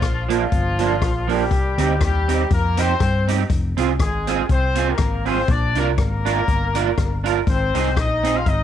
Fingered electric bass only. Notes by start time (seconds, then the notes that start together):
0.03 A#1
0.52 G1
1.02 A#1
1.51 C2
1.78 D2
2.01 D#2
2.51 F2
3.01 G2
3.50 F1
3.77 C2
3.99 G#1
4.49 C2
4.99 G#1
5.48 A#1
5.76 C2
5.98 G#1
6.48 G1
6.98 G1
7.47 G#1
7.74 C2
7.97 A#1
8.47 G#1